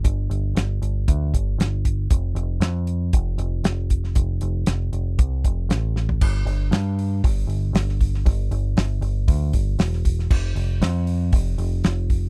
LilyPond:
<<
  \new Staff \with { instrumentName = "Picked electric bass" } { \clef bass \time 4/4 \key f \lydian \tempo 4 = 117 g,,8 g,,8 g,,8 g,,8 d,8 g,,8 g,,4 | f,,8 f,,8 f,4 f,,8 f,,8 f,,4 | f,,8 f,,8 f,,8 f,,8 c,8 f,,8 a,,4 | g,,8 g,,8 g,4 g,,8 g,,8 g,,4 |
g,,8 g,,8 g,,8 g,,8 d,8 g,,8 e,,4 | f,,8 f,,8 f,4 f,,8 f,,8 f,,4 | }
  \new DrumStaff \with { instrumentName = "Drums" } \drummode { \time 4/4 <hh bd>8 hh8 <hh sn>8 hh8 <hh bd>8 <hh bd>8 <hh sn>8 <hh bd>8 | <hh bd>8 hh8 <hh sn>8 hh8 <hh bd>8 hh8 <hh sn>8 <hh bd>16 sn16 | <hh bd>8 hh8 <hh sn>8 hh8 <hh bd>8 <hh bd>8 <hh sn>8 sn16 tomfh16 | <cymc bd>8 hho8 <hho sn>8 hho8 <hho bd>8 hho8 <hho sn>16 sn16 <hho bd>16 sn16 |
<hho bd>8 hho8 <hho sn>8 hho8 <hho bd>8 <hho bd>8 <hho sn>16 sn16 <hho bd>16 sn16 | <cymc bd>8 hho8 <hho sn>8 hho8 <hho bd>8 hho8 <hho sn>8 <hho bd>8 | }
>>